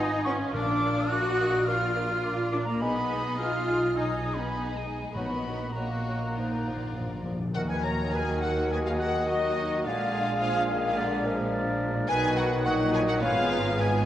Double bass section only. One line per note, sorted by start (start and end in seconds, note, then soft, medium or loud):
0.00 0.51 G#1 medium
0.54 2.78 A#1 medium
2.82 5.11 B1 medium
5.15 7.31 A#1 medium
7.54 9.80 D#2 medium
9.84 12.05 A#1 medium
12.09 12.65 B1 medium
12.65 13.22 A#1 medium
13.22 14.05 G#1 medium